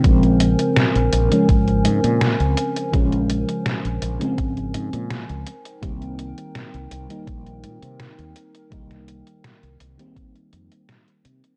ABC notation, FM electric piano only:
X:1
M:4/4
L:1/16
Q:1/4=83
K:Bbdor
V:1 name="FM electric piano" clef=bass
[D,F,A,C]6- [D,F,A,C] [D,F,A,D]8- [D,F,A,D] | [D,F,A,D]6- [D,F,A,D] [D,F,A,C]6- [D,F,A,C] z2 | [E,G,B,C]6- [E,G,B,C] [E,G,B,E]8- [E,G,B,E] | [E,G,B,E]6- [E,G,B,E] [E,G,B,C]8- [E,G,B,C] |]